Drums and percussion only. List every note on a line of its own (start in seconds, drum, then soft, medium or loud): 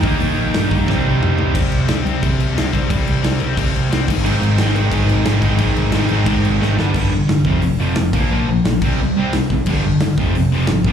0.03 kick loud
0.20 open hi-hat medium
0.54 snare loud
0.54 open hi-hat medium
0.71 kick loud
0.88 kick loud
0.88 snare medium
1.23 mid tom loud
1.38 floor tom medium
1.55 kick loud
1.55 crash loud
1.55 crash medium
1.72 crash medium
1.88 snare loud
1.88 crash medium
2.07 crash medium
2.23 kick loud
2.23 crash medium
2.40 crash medium
2.58 snare loud
2.58 crash medium
2.73 kick medium
2.73 crash medium
2.90 kick loud
2.90 crash medium
3.07 crash medium
3.24 snare loud
3.24 crash medium
3.40 crash medium
3.57 kick loud
3.57 crash loud
3.76 crash medium
3.92 snare loud
3.92 crash medium
4.08 kick loud
4.08 crash loud
4.26 crash medium
4.43 crash medium
4.58 snare loud
4.58 crash medium
4.76 crash medium
4.92 kick loud
4.92 crash medium
5.09 crash medium
5.25 snare loud
5.25 crash medium
5.42 kick medium
5.42 crash medium
5.58 kick loud
5.58 crash medium
5.76 crash medium
5.92 snare loud
5.92 crash medium
6.09 crash medium
6.26 kick loud
6.26 crash medium
6.45 crash medium
6.62 snare medium
6.79 snare loud
6.94 kick loud
6.94 crash loud
7.29 snare loud
7.29 open hi-hat medium
7.45 kick loud
7.62 open hi-hat medium
7.95 snare loud
7.95 open hi-hat medium
8.13 kick loud
8.13 crash medium
8.65 snare loud
8.65 open hi-hat medium
8.82 kick loud
8.82 crash medium
9.33 snare loud
9.33 open hi-hat medium
9.50 kick medium
9.66 kick loud
9.66 crash loud
10.00 snare loud
10.00 open hi-hat medium
10.18 kick loud
10.35 open hi-hat medium
10.67 snare loud
10.67 open hi-hat medium
10.84 kick loud